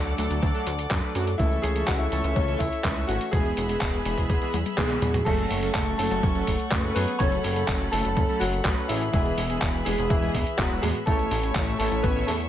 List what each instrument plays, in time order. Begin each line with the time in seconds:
Already playing: analog synth bass D2, analog polysynth F#3 A3 D4 A4, grand piano F#4, string section A4 D5 F#5 D6
0.06 closed hi-hat, tambourine
0.18 analog synth bass D2, analog polysynth F#3 A3 D4 A4, closed hi-hat, tambourine
0.30 analog synth bass D2, closed hi-hat, tambourine
0.43 analog synth bass D2, kick, closed hi-hat, tambourine
0.55 analog polysynth F#3 A3 D4 A4, closed hi-hat, tambourine
0.67 analog synth bass D2, closed hi-hat, tambourine
0.79 closed hi-hat, tambourine
0.91 analog synth bass F#2, analog polysynth F#3 A3 D4 B4, kick, clap, closed hi-hat, tambourine
1.03 closed hi-hat, tambourine
1.15 analog synth bass F#2, analog polysynth F#3 A3 D4 F#4, closed hi-hat, tambourine
1.27 closed hi-hat, tambourine
1.38 analog synth bass C#2, analog polysynth E3 A3 C#4 A4, grand piano E4, string section C#5 E5 C#6, kick, closed hi-hat, tambourine
1.51 closed hi-hat, tambourine
1.62 analog synth bass C#2, grand piano G#4, closed hi-hat, tambourine
1.76 analog polysynth E3 A3 C#4 A4, closed hi-hat, tambourine
1.86 analog synth bass C#2, grand piano F#4, kick, clap, closed hi-hat, tambourine
1.98 grand piano E4, closed hi-hat, tambourine
2.12 analog synth bass C#2, analog polysynth E3 A3 C#4 A4, closed hi-hat, tambourine
2.24 analog synth bass C#2, closed hi-hat, tambourine
2.35 analog synth bass C#2, grand piano C#4, kick, closed hi-hat, tambourine
2.48 analog polysynth E3 A3 C#4 A4, closed hi-hat, tambourine
2.59 analog synth bass C#2, grand piano E4, kick, closed hi-hat, tambourine
2.72 closed hi-hat, tambourine
2.84 analog synth bass C#2, analog polysynth E3 A3 C#4 B4, kick, clap, closed hi-hat, tambourine
2.97 closed hi-hat, tambourine
3.07 analog synth bass G#1, analog polysynth E3 A3 C#4 F#4, grand piano F#4, closed hi-hat, tambourine
3.21 closed hi-hat, tambourine
3.31 analog synth bass E1, analog polysynth E3 G#3 B3 G#4, grand piano G#4, string section G#4 B4 E5 B5, kick, closed hi-hat, tambourine
3.45 closed hi-hat, tambourine
3.57 analog synth bass E1, closed hi-hat, tambourine
3.69 analog polysynth E3 G#3 B3 G#4, closed hi-hat, tambourine
3.81 analog synth bass E1, kick, clap, closed hi-hat, tambourine
3.93 closed hi-hat, tambourine
4.05 analog synth bass E1, analog polysynth E3 G#3 B3 G#4, closed hi-hat, tambourine
4.18 analog synth bass E1, kick, closed hi-hat, tambourine
4.30 analog synth bass E1, kick, closed hi-hat, tambourine
4.42 analog polysynth E3 G#3 B3 G#4, closed hi-hat, tambourine
4.54 analog synth bass E2, closed hi-hat, high tom, tambourine
4.66 closed hi-hat, high tom, tambourine
4.77 analog synth bass B1, analog polysynth E3 G#3 B3 B4, grand piano G#3 G#4, kick, clap, closed hi-hat, mid tom, tambourine
4.90 clap, closed hi-hat, mid tom, tambourine
5.02 analog synth bass E2, analog polysynth E3 G#3 B3 F#4, closed hi-hat, mid tom, tambourine
5.14 closed hi-hat, mid tom, tambourine
5.25 analog synth bass F#1, analog polysynth F#3 A3 C#4 A4, grand piano A3 A4, string section A4 C#5 F#5 C#6, kick, closed hi-hat, tambourine, crash
5.38 closed hi-hat, tambourine
5.50 analog synth bass F#1, open hi-hat, tambourine
5.63 analog polysynth F#3 A3 C#4 A4, closed hi-hat, tambourine
5.73 analog synth bass F#1, grand piano A3 A4, kick, clap, closed hi-hat, tambourine
5.87 closed hi-hat, tambourine
5.98 analog synth bass F#1, analog polysynth F#3 A3 C#4 A4, grand piano A3 A4, open hi-hat, tambourine
6.11 analog synth bass F#1, closed hi-hat, tambourine
6.23 analog synth bass F#1, kick, closed hi-hat, tambourine
6.35 analog polysynth F#3 A3 C#4 A4, closed hi-hat, tambourine
6.47 analog synth bass F#1, kick, open hi-hat, tambourine
6.59 closed hi-hat, tambourine
6.72 analog synth bass F#1, analog polysynth F#3 A3 C#4 B4, kick, clap, closed hi-hat, tambourine
6.84 closed hi-hat, tambourine
6.94 analog synth bass F#2, analog polysynth F#3 A3 C#4 G#4, grand piano B3 B4, open hi-hat, tambourine
7.08 closed hi-hat, tambourine
7.19 analog synth bass F#1, analog polysynth F#3 A3 C#4 A4, grand piano C#4 C#5, string section B5, kick, closed hi-hat, tambourine
7.32 closed hi-hat, tambourine
7.44 analog synth bass F#1, open hi-hat, tambourine
7.56 analog polysynth F#3 A3 C#4 A4, closed hi-hat, tambourine
7.68 analog synth bass F#1, kick, clap, closed hi-hat, tambourine
7.80 closed hi-hat, tambourine
7.92 analog synth bass F#1, analog polysynth F#3 A3 C#4 A4, grand piano A3 A4, open hi-hat, tambourine
8.05 analog synth bass F#1, closed hi-hat, tambourine
8.17 analog synth bass F#1, kick, closed hi-hat, tambourine
8.29 analog polysynth F#3 A3 C#4 A4, closed hi-hat, tambourine
8.40 analog synth bass F#1, grand piano F#3 F#4, open hi-hat, tambourine
8.53 closed hi-hat, tambourine
8.65 analog synth bass A1, analog polysynth F#3 A3 C#4 B4, kick, clap, closed hi-hat, tambourine
8.77 closed hi-hat, tambourine
8.88 analog synth bass A1, grand piano E3 E4, analog polysynth F#3 A3 C#4 G#4, open hi-hat, tambourine
9.01 closed hi-hat, tambourine
9.12 analog synth bass E1, analog polysynth E3 G#3 B3 G#4, grand piano E3 E4, string section G#4 B4 E5, kick, closed hi-hat, tambourine
9.26 closed hi-hat, tambourine
9.38 analog synth bass E1, open hi-hat, tambourine
9.50 analog polysynth E3 G#3 B3 G#4, closed hi-hat, tambourine
9.62 analog synth bass E1, kick, clap, closed hi-hat, tambourine
9.74 closed hi-hat, tambourine
9.85 analog synth bass E1, analog polysynth E3 G#3 B3 G#4, grand piano G#3 G#4, open hi-hat, tambourine
9.98 analog synth bass E1, closed hi-hat, tambourine
10.09 analog synth bass E1, grand piano E3 E4, kick, closed hi-hat, tambourine
10.22 analog polysynth E3 G#3 B3 G#4, closed hi-hat, tambourine
10.34 analog synth bass E1, kick, open hi-hat, tambourine
10.47 closed hi-hat, tambourine
10.57 analog synth bass E1, analog polysynth E3 G#3 B3 B4, grand piano F#3 F#4, kick, clap, closed hi-hat, tambourine
10.71 closed hi-hat, tambourine
10.82 analog synth bass E2, analog polysynth A2 E3 G#3 B3 F#4, grand piano G#3 G#4, open hi-hat, tambourine
10.95 closed hi-hat, tambourine
11.06 analog synth bass A1, analog polysynth A2 A3 C#4 E4 C#5, grand piano A3 A4, string section E4 C#5 E5 C#6, kick, closed hi-hat, tambourine
11.19 closed hi-hat, tambourine
11.31 analog synth bass A1, open hi-hat, tambourine
11.43 analog polysynth A2 A3 C#4 E4 C#5, closed hi-hat, tambourine
11.55 analog synth bass A1, kick, clap, closed hi-hat, tambourine
11.68 closed hi-hat, tambourine
11.78 analog synth bass A1, analog polysynth A2 A3 C#4 E4 C#5, grand piano A3 A4, open hi-hat, tambourine
11.92 analog synth bass A1, closed hi-hat, tambourine
12.03 analog synth bass A1, grand piano B3 B4, kick, closed hi-hat, tambourine
12.16 analog polysynth A2 A3 C#4 E4 C#5, closed hi-hat, tambourine
12.27 analog synth bass E2, grand piano A3 A4, open hi-hat, tambourine
12.40 closed hi-hat, tambourine